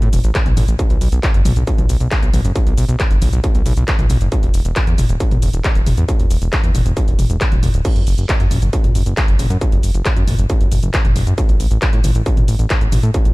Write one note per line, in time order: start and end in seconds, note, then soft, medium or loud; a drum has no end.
0.02 0.09 A2 medium
0.02 closed hi-hat medium
0.02 shaker soft
0.13 0.20 E1 medium
0.13 open hi-hat loud
0.13 mid tom medium
0.13 shaker medium
0.24 0.31 A1 medium
0.24 closed hi-hat medium
0.24 shaker soft
0.35 kick loud
0.35 clap loud
0.35 closed hi-hat medium
0.35 shaker soft
0.46 0.53 B1 medium
0.46 closed hi-hat medium
0.46 mid tom medium
0.46 shaker soft
0.57 0.64 A1 loud
0.57 open hi-hat loud
0.57 mid tom medium
0.57 shaker medium
0.68 0.75 A1 loud
0.68 closed hi-hat soft
0.68 shaker soft
0.79 kick loud
0.79 closed hi-hat medium
0.79 shaker soft
0.90 0.97 B1 medium
0.90 closed hi-hat medium
0.90 shaker soft
1.01 1.08 B1 loud
1.01 open hi-hat loud
1.01 shaker medium
1.12 1.19 B1 medium
1.12 closed hi-hat medium
1.12 shaker soft
1.23 kick loud
1.23 clap loud
1.23 closed hi-hat medium
1.23 shaker soft
1.34 1.42 F#1 medium
1.34 closed hi-hat medium
1.34 shaker soft
1.45 1.53 B1 loud
1.45 open hi-hat loud
1.45 mid tom medium
1.45 shaker medium
1.56 1.64 B1 medium
1.56 closed hi-hat medium
1.56 shaker soft
1.67 kick loud
1.67 closed hi-hat medium
1.67 shaker soft
1.78 1.86 B1 medium
1.78 closed hi-hat medium
1.78 mid tom medium
1.78 shaker soft
1.89 1.97 B1 loud
1.89 open hi-hat loud
1.89 shaker medium
2.00 2.08 B1 medium
2.00 closed hi-hat medium
2.00 shaker soft
2.11 kick loud
2.11 clap loud
2.11 closed hi-hat medium
2.11 shaker soft
2.23 2.30 B1 medium
2.23 closed hi-hat medium
2.23 shaker soft
2.33 2.41 B1 loud
2.33 open hi-hat loud
2.33 mid tom medium
2.33 shaker medium
2.45 2.52 F#1 medium
2.45 closed hi-hat medium
2.45 shaker soft
2.56 kick loud
2.56 closed hi-hat medium
2.56 shaker soft
2.66 2.74 B1 medium
2.66 closed hi-hat medium
2.66 shaker soft
2.78 2.85 B1 loud
2.78 open hi-hat loud
2.78 shaker medium
2.89 2.96 B1 loud
2.89 closed hi-hat medium
2.89 shaker soft
3.00 kick loud
3.00 clap loud
3.00 closed hi-hat medium
3.00 shaker soft
3.11 3.18 F#1 medium
3.11 closed hi-hat medium
3.11 shaker soft
3.22 3.29 B1 loud
3.22 open hi-hat loud
3.22 mid tom medium
3.22 shaker medium
3.33 3.40 B1 medium
3.33 closed hi-hat medium
3.33 shaker soft
3.44 kick loud
3.44 closed hi-hat medium
3.44 shaker soft
3.55 3.62 B1 medium
3.55 closed hi-hat medium
3.55 shaker soft
3.66 3.73 B1 loud
3.66 open hi-hat loud
3.66 mid tom medium
3.66 shaker medium
3.77 3.84 B1 medium
3.77 closed hi-hat medium
3.77 shaker soft
3.88 kick loud
3.88 clap loud
3.88 closed hi-hat loud
3.88 shaker soft
3.99 4.06 B1 medium
3.99 closed hi-hat medium
3.99 mid tom medium
3.99 shaker soft
4.10 4.17 B1 loud
4.10 open hi-hat loud
4.10 mid tom medium
4.10 shaker medium
4.21 4.28 F#1 medium
4.21 closed hi-hat medium
4.21 shaker soft
4.32 kick loud
4.32 closed hi-hat loud
4.32 shaker soft
4.43 4.50 E1 medium
4.43 closed hi-hat medium
4.43 shaker soft
4.54 4.61 E1 loud
4.54 open hi-hat loud
4.54 shaker medium
4.65 4.72 E1 medium
4.65 closed hi-hat medium
4.65 shaker soft
4.76 kick loud
4.76 clap loud
4.76 closed hi-hat loud
4.76 shaker soft
4.87 4.95 E2 medium
4.87 closed hi-hat medium
4.87 shaker soft
4.98 5.06 E1 loud
4.98 open hi-hat loud
4.98 mid tom medium
4.98 shaker medium
5.09 5.17 E1 medium
5.09 closed hi-hat medium
5.09 shaker soft
5.20 kick loud
5.20 closed hi-hat medium
5.20 shaker soft
5.31 5.39 E1 medium
5.31 closed hi-hat medium
5.31 mid tom medium
5.31 shaker soft
5.42 5.50 E1 loud
5.42 open hi-hat loud
5.42 shaker medium
5.53 5.61 E1 medium
5.53 closed hi-hat medium
5.53 shaker soft
5.64 kick loud
5.64 clap loud
5.64 closed hi-hat loud
5.64 shaker soft
5.75 5.83 E1 medium
5.75 closed hi-hat medium
5.75 shaker soft
5.87 5.94 E1 loud
5.87 open hi-hat loud
5.87 mid tom medium
5.87 shaker medium
5.97 6.05 E2 loud
5.97 closed hi-hat medium
5.97 shaker soft
6.09 kick loud
6.09 closed hi-hat loud
6.09 shaker soft
6.20 6.27 E1 medium
6.20 closed hi-hat medium
6.20 shaker soft
6.31 6.38 E1 loud
6.31 open hi-hat loud
6.31 shaker medium
6.42 6.49 E1 medium
6.42 closed hi-hat medium
6.42 shaker soft
6.53 kick loud
6.53 clap loud
6.53 closed hi-hat loud
6.53 shaker soft
6.64 6.71 E2 medium
6.64 closed hi-hat medium
6.64 shaker soft
6.75 6.82 E1 loud
6.75 open hi-hat loud
6.75 mid tom medium
6.75 shaker medium
6.86 6.93 E1 medium
6.86 closed hi-hat medium
6.86 shaker soft
6.97 kick loud
6.97 closed hi-hat loud
6.97 shaker soft
7.08 7.15 E1 medium
7.08 closed hi-hat medium
7.08 shaker soft
7.19 7.26 E1 loud
7.19 open hi-hat loud
7.19 mid tom medium
7.19 shaker medium
7.30 7.37 E1 medium
7.30 closed hi-hat medium
7.30 shaker soft
7.41 kick loud
7.41 clap loud
7.41 closed hi-hat loud
7.41 shaker soft
7.52 7.59 D1 medium
7.52 closed hi-hat medium
7.52 mid tom medium
7.52 shaker soft
7.63 7.70 E1 loud
7.63 open hi-hat loud
7.63 mid tom medium
7.63 shaker medium
7.74 7.81 D1 loud
7.74 closed hi-hat medium
7.74 shaker soft
7.85 kick loud
7.85 closed hi-hat medium
7.85 crash medium
7.85 shaker soft
7.96 8.03 F#1 medium
7.96 closed hi-hat medium
7.96 shaker soft
8.07 8.14 F#1 loud
8.07 open hi-hat loud
8.07 shaker medium
8.18 8.25 F#1 medium
8.18 closed hi-hat medium
8.18 shaker soft
8.29 kick loud
8.29 clap loud
8.29 closed hi-hat medium
8.29 shaker soft
8.40 8.47 F#2 medium
8.40 closed hi-hat medium
8.40 shaker soft
8.51 8.58 F#1 loud
8.51 open hi-hat loud
8.51 mid tom medium
8.51 shaker medium
8.62 8.69 F#1 medium
8.62 closed hi-hat medium
8.62 shaker soft
8.73 kick loud
8.73 closed hi-hat loud
8.73 shaker soft
8.84 8.91 F#1 medium
8.84 closed hi-hat medium
8.84 mid tom medium
8.84 shaker soft
8.95 9.03 F#1 loud
8.95 open hi-hat loud
8.95 shaker medium
9.06 9.14 F#1 medium
9.06 closed hi-hat medium
9.06 shaker soft
9.17 kick loud
9.17 clap loud
9.17 closed hi-hat loud
9.17 shaker soft
9.28 9.36 F#1 medium
9.28 closed hi-hat medium
9.28 shaker soft
9.39 9.47 F#1 loud
9.39 open hi-hat loud
9.39 mid tom medium
9.39 shaker medium
9.50 9.58 F#2 loud
9.50 closed hi-hat medium
9.50 shaker soft
9.61 kick loud
9.61 closed hi-hat medium
9.61 shaker soft
9.72 9.80 F#1 medium
9.72 closed hi-hat medium
9.72 shaker soft
9.83 9.91 F#1 loud
9.83 open hi-hat loud
9.83 shaker medium
9.94 10.02 F#1 medium
9.94 closed hi-hat medium
9.94 shaker soft
10.05 kick loud
10.05 clap loud
10.05 closed hi-hat medium
10.05 shaker soft
10.16 10.24 F#2 medium
10.16 closed hi-hat medium
10.16 shaker soft
10.28 10.35 F#1 loud
10.28 open hi-hat loud
10.28 mid tom medium
10.28 shaker medium
10.39 10.46 F#1 medium
10.39 closed hi-hat medium
10.39 shaker soft
10.50 kick loud
10.50 closed hi-hat medium
10.50 shaker soft
10.61 10.68 F#1 medium
10.61 closed hi-hat medium
10.61 shaker soft
10.72 10.79 F#1 loud
10.72 open hi-hat loud
10.72 mid tom medium
10.72 shaker medium
10.83 10.90 F#1 medium
10.83 closed hi-hat medium
10.83 shaker soft
10.94 kick loud
10.94 clap loud
10.94 closed hi-hat medium
10.94 shaker soft
11.05 11.12 F#1 medium
11.05 closed hi-hat medium
11.05 mid tom medium
11.05 shaker soft
11.16 11.23 F#1 loud
11.16 open hi-hat loud
11.16 mid tom medium
11.16 shaker medium
11.27 11.34 F#2 loud
11.27 closed hi-hat medium
11.27 shaker soft
11.38 kick loud
11.38 closed hi-hat medium
11.38 shaker soft
11.49 11.56 A1 medium
11.49 closed hi-hat medium
11.49 shaker soft
11.60 11.67 A1 loud
11.60 open hi-hat loud
11.60 shaker medium
11.71 11.78 A1 loud
11.71 closed hi-hat medium
11.71 shaker soft
11.82 kick loud
11.82 clap loud
11.82 closed hi-hat medium
11.82 shaker soft
11.93 12.00 A2 medium
11.93 closed hi-hat medium
11.93 shaker soft
12.04 12.11 A1 loud
12.04 open hi-hat loud
12.04 mid tom medium
12.04 shaker medium
12.15 12.22 A1 medium
12.15 closed hi-hat medium
12.15 shaker soft
12.26 kick loud
12.26 closed hi-hat medium
12.26 shaker soft
12.37 12.45 A1 medium
12.37 closed hi-hat medium
12.37 mid tom medium
12.37 shaker soft
12.48 12.56 A1 loud
12.48 open hi-hat loud
12.48 shaker medium
12.59 12.67 A1 medium
12.59 closed hi-hat medium
12.59 shaker soft
12.70 kick loud
12.70 clap loud
12.70 closed hi-hat medium
12.70 shaker soft
12.81 12.89 A1 medium
12.81 closed hi-hat medium
12.81 shaker soft
12.92 13.00 A1 loud
12.92 open hi-hat loud
12.92 mid tom medium
12.92 shaker medium
13.03 13.11 A2 loud
13.03 closed hi-hat medium
13.03 shaker soft
13.14 kick loud
13.14 closed hi-hat medium
13.14 shaker soft
13.25 13.33 A1 medium
13.25 closed hi-hat medium
13.25 shaker soft